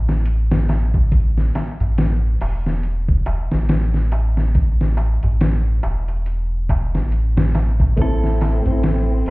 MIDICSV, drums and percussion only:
0, 0, Header, 1, 3, 480
1, 0, Start_track
1, 0, Key_signature, 0, "minor"
1, 0, Tempo, 857143
1, 627, Time_signature, 4, 2, 24, 8
1, 5209, End_track
2, 0, Start_track
2, 0, Title_t, "Darbuka"
2, 47, Note_on_c, 9, 63, 52
2, 103, Note_off_c, 9, 63, 0
2, 150, Note_on_c, 9, 63, 36
2, 206, Note_off_c, 9, 63, 0
2, 287, Note_on_c, 9, 64, 63
2, 343, Note_off_c, 9, 64, 0
2, 388, Note_on_c, 9, 63, 95
2, 444, Note_off_c, 9, 63, 0
2, 531, Note_on_c, 9, 63, 48
2, 587, Note_off_c, 9, 63, 0
2, 631, Note_on_c, 9, 63, 37
2, 687, Note_off_c, 9, 63, 0
2, 870, Note_on_c, 9, 63, 95
2, 926, Note_off_c, 9, 63, 0
2, 1012, Note_on_c, 9, 63, 51
2, 1012, Note_on_c, 9, 64, 77
2, 1068, Note_off_c, 9, 63, 0
2, 1068, Note_off_c, 9, 64, 0
2, 1112, Note_on_c, 9, 63, 36
2, 1168, Note_off_c, 9, 63, 0
2, 1353, Note_on_c, 9, 63, 101
2, 1409, Note_off_c, 9, 63, 0
2, 1492, Note_on_c, 9, 63, 53
2, 1548, Note_off_c, 9, 63, 0
2, 1593, Note_on_c, 9, 63, 39
2, 1649, Note_off_c, 9, 63, 0
2, 1828, Note_on_c, 9, 63, 98
2, 1884, Note_off_c, 9, 63, 0
2, 1969, Note_on_c, 9, 63, 54
2, 2025, Note_off_c, 9, 63, 0
2, 2074, Note_on_c, 9, 63, 42
2, 2130, Note_off_c, 9, 63, 0
2, 2308, Note_on_c, 9, 63, 90
2, 2364, Note_off_c, 9, 63, 0
2, 2447, Note_on_c, 9, 63, 56
2, 2503, Note_off_c, 9, 63, 0
2, 2550, Note_on_c, 9, 63, 40
2, 2606, Note_off_c, 9, 63, 0
2, 2784, Note_on_c, 9, 63, 92
2, 2840, Note_off_c, 9, 63, 0
2, 2931, Note_on_c, 9, 63, 52
2, 2935, Note_on_c, 9, 64, 71
2, 2987, Note_off_c, 9, 63, 0
2, 2991, Note_off_c, 9, 64, 0
2, 3032, Note_on_c, 9, 63, 37
2, 3088, Note_off_c, 9, 63, 0
2, 3266, Note_on_c, 9, 63, 96
2, 3322, Note_off_c, 9, 63, 0
2, 3408, Note_on_c, 9, 63, 49
2, 3464, Note_off_c, 9, 63, 0
2, 3511, Note_on_c, 9, 63, 35
2, 3567, Note_off_c, 9, 63, 0
2, 3752, Note_on_c, 9, 63, 91
2, 3808, Note_off_c, 9, 63, 0
2, 3889, Note_on_c, 9, 63, 55
2, 3945, Note_off_c, 9, 63, 0
2, 3988, Note_on_c, 9, 63, 36
2, 4044, Note_off_c, 9, 63, 0
2, 4126, Note_on_c, 9, 64, 70
2, 4182, Note_off_c, 9, 64, 0
2, 4227, Note_on_c, 9, 63, 92
2, 4283, Note_off_c, 9, 63, 0
2, 4372, Note_on_c, 9, 63, 56
2, 4428, Note_off_c, 9, 63, 0
2, 4468, Note_on_c, 9, 63, 37
2, 4524, Note_off_c, 9, 63, 0
2, 4713, Note_on_c, 9, 63, 93
2, 4769, Note_off_c, 9, 63, 0
2, 4847, Note_on_c, 9, 64, 70
2, 4854, Note_on_c, 9, 63, 49
2, 4903, Note_off_c, 9, 64, 0
2, 4910, Note_off_c, 9, 63, 0
2, 4952, Note_on_c, 9, 63, 32
2, 5008, Note_off_c, 9, 63, 0
2, 5209, End_track
3, 0, Start_track
3, 0, Title_t, "Drums"
3, 50, Note_on_c, 9, 38, 45
3, 106, Note_off_c, 9, 38, 0
3, 143, Note_on_c, 9, 42, 83
3, 199, Note_off_c, 9, 42, 0
3, 289, Note_on_c, 9, 38, 105
3, 345, Note_off_c, 9, 38, 0
3, 386, Note_on_c, 9, 42, 57
3, 388, Note_on_c, 9, 38, 42
3, 442, Note_off_c, 9, 42, 0
3, 444, Note_off_c, 9, 38, 0
3, 527, Note_on_c, 9, 36, 90
3, 583, Note_off_c, 9, 36, 0
3, 626, Note_on_c, 9, 36, 97
3, 626, Note_on_c, 9, 42, 80
3, 682, Note_off_c, 9, 36, 0
3, 682, Note_off_c, 9, 42, 0
3, 770, Note_on_c, 9, 38, 34
3, 826, Note_off_c, 9, 38, 0
3, 869, Note_on_c, 9, 42, 60
3, 871, Note_on_c, 9, 38, 42
3, 925, Note_off_c, 9, 42, 0
3, 927, Note_off_c, 9, 38, 0
3, 1010, Note_on_c, 9, 42, 44
3, 1066, Note_off_c, 9, 42, 0
3, 1108, Note_on_c, 9, 42, 80
3, 1111, Note_on_c, 9, 38, 108
3, 1164, Note_off_c, 9, 42, 0
3, 1167, Note_off_c, 9, 38, 0
3, 1348, Note_on_c, 9, 46, 74
3, 1404, Note_off_c, 9, 46, 0
3, 1492, Note_on_c, 9, 38, 40
3, 1548, Note_off_c, 9, 38, 0
3, 1587, Note_on_c, 9, 42, 77
3, 1643, Note_off_c, 9, 42, 0
3, 1728, Note_on_c, 9, 36, 86
3, 1784, Note_off_c, 9, 36, 0
3, 1826, Note_on_c, 9, 42, 60
3, 1882, Note_off_c, 9, 42, 0
3, 1968, Note_on_c, 9, 38, 54
3, 2024, Note_off_c, 9, 38, 0
3, 2066, Note_on_c, 9, 42, 77
3, 2069, Note_on_c, 9, 38, 101
3, 2122, Note_off_c, 9, 42, 0
3, 2125, Note_off_c, 9, 38, 0
3, 2207, Note_on_c, 9, 38, 41
3, 2263, Note_off_c, 9, 38, 0
3, 2306, Note_on_c, 9, 42, 62
3, 2362, Note_off_c, 9, 42, 0
3, 2449, Note_on_c, 9, 38, 37
3, 2505, Note_off_c, 9, 38, 0
3, 2547, Note_on_c, 9, 42, 74
3, 2549, Note_on_c, 9, 36, 93
3, 2603, Note_off_c, 9, 42, 0
3, 2605, Note_off_c, 9, 36, 0
3, 2693, Note_on_c, 9, 38, 46
3, 2749, Note_off_c, 9, 38, 0
3, 2787, Note_on_c, 9, 42, 63
3, 2843, Note_off_c, 9, 42, 0
3, 2928, Note_on_c, 9, 42, 43
3, 2984, Note_off_c, 9, 42, 0
3, 3028, Note_on_c, 9, 42, 80
3, 3031, Note_on_c, 9, 38, 111
3, 3084, Note_off_c, 9, 42, 0
3, 3087, Note_off_c, 9, 38, 0
3, 3266, Note_on_c, 9, 42, 63
3, 3322, Note_off_c, 9, 42, 0
3, 3406, Note_on_c, 9, 42, 42
3, 3462, Note_off_c, 9, 42, 0
3, 3506, Note_on_c, 9, 42, 78
3, 3562, Note_off_c, 9, 42, 0
3, 3749, Note_on_c, 9, 36, 81
3, 3750, Note_on_c, 9, 42, 57
3, 3805, Note_off_c, 9, 36, 0
3, 3806, Note_off_c, 9, 42, 0
3, 3891, Note_on_c, 9, 38, 43
3, 3947, Note_off_c, 9, 38, 0
3, 3987, Note_on_c, 9, 42, 74
3, 4043, Note_off_c, 9, 42, 0
3, 4130, Note_on_c, 9, 38, 102
3, 4186, Note_off_c, 9, 38, 0
3, 4226, Note_on_c, 9, 42, 65
3, 4229, Note_on_c, 9, 38, 42
3, 4282, Note_off_c, 9, 42, 0
3, 4285, Note_off_c, 9, 38, 0
3, 4367, Note_on_c, 9, 36, 87
3, 4423, Note_off_c, 9, 36, 0
3, 4465, Note_on_c, 9, 42, 80
3, 4467, Note_on_c, 9, 36, 102
3, 4521, Note_off_c, 9, 42, 0
3, 4523, Note_off_c, 9, 36, 0
3, 4613, Note_on_c, 9, 38, 34
3, 4669, Note_off_c, 9, 38, 0
3, 4710, Note_on_c, 9, 42, 66
3, 4713, Note_on_c, 9, 38, 39
3, 4766, Note_off_c, 9, 42, 0
3, 4769, Note_off_c, 9, 38, 0
3, 4848, Note_on_c, 9, 42, 41
3, 4904, Note_off_c, 9, 42, 0
3, 4947, Note_on_c, 9, 42, 82
3, 4949, Note_on_c, 9, 38, 103
3, 5003, Note_off_c, 9, 42, 0
3, 5005, Note_off_c, 9, 38, 0
3, 5187, Note_on_c, 9, 46, 76
3, 5209, Note_off_c, 9, 46, 0
3, 5209, End_track
0, 0, End_of_file